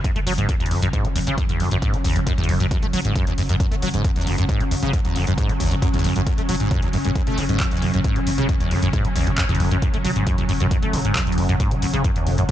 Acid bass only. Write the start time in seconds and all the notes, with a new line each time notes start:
0.04 F#2
0.16 A3
0.27 F#3
0.38 G#2
0.49 F#2
0.60 E2
0.71 F#2
0.82 F#2
0.93 G#2
1.04 F#3
1.15 E2
1.27 C#3
1.38 F#2
1.49 E2
1.60 F#2
1.71 F#2
1.82 G#2
1.93 F#3
2.04 E2
2.16 A2
2.27 F#2
2.38 E2
2.49 F#2
2.60 F#2
2.71 F#2
2.83 A3
2.93 F#3
3.05 G#2
3.16 F#2
3.27 E2
3.38 F#2
3.49 F#2
3.60 F#2
3.71 A3
3.82 F#3
3.94 G#2
4.16 E2
4.27 F#2
4.38 F#2
4.49 G#2
4.60 F#3
4.71 E2
4.83 C#3
4.93 F#2
5.05 E2
5.15 F#2
5.27 F#2
5.38 G#2
5.49 F#3
5.60 E2
5.71 A2
5.82 F#2
5.93 E2
6.04 F#2
6.16 F#2
6.26 F#2
6.38 A3
6.49 F#3
6.60 G#2
6.71 F#2
6.82 E2
6.93 F#2
7.05 F#2
7.15 F#2
7.27 A3
7.38 B2
7.49 G#2
7.60 F#2
7.71 E2
7.82 F#2
7.94 F#2
8.04 G#2
8.16 F#3
8.27 E2
8.38 C#3
8.49 F#2
8.60 E2
8.71 F#2
8.82 F#2
8.93 G#2
9.05 F#3
9.16 E2
9.27 A2
9.38 F#2
9.49 E2
9.60 F#2
9.71 F#2
9.82 F#2
9.94 A3
10.05 F#3
10.16 G#2
10.27 F#2
10.38 E2
10.49 F#2
10.60 F#2
10.71 F#2
10.83 A3
10.93 B2
11.05 G#2
11.16 F#2
11.27 E2
11.38 F#2
11.49 F#2
11.60 G#2
11.71 F#3
11.82 E2
11.94 C#3
12.04 F#2
12.16 E2
12.27 F#2
12.38 F#2